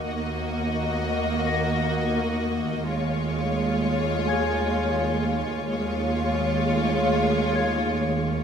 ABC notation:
X:1
M:3/4
L:1/8
Q:1/4=64
K:Dbmix
V:1 name="Celesta"
d'3 b'3- | b'3 [aa']3- | [aa']3 z a'2 |]
V:2 name="Violin section"
e6 | d6 | d6 |]
V:3 name="Violin section"
G6 | F6 | F6 |]
V:4 name="Viola section" clef=bass
B,6 | A,6 | A,6 |]
V:5 name="Cello section" clef=bass
E,,6 | E,,6 | E,,6 |]
V:6 name="Double bass section" clef=bass
E,,6 | E,,6 | E,,6 |]